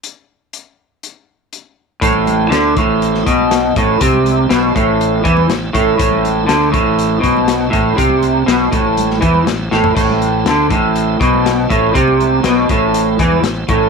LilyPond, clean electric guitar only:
\new Staff \with { instrumentName = "Clean electric guitar" } { \clef bass \time 4/4 \key a \minor \tempo 4 = 121 r1 | a,4 d8 a,4 b,4 a,8 | c4 b,8 a,4 e8 a,8 a,8 | a,4 d8 a,4 b,4 a,8 |
c4 b,8 a,4 e8 a,8 a,8 | a,4 d8 a,4 b,4 a,8 | c4 b,8 a,4 e8 a,8 a,8 | }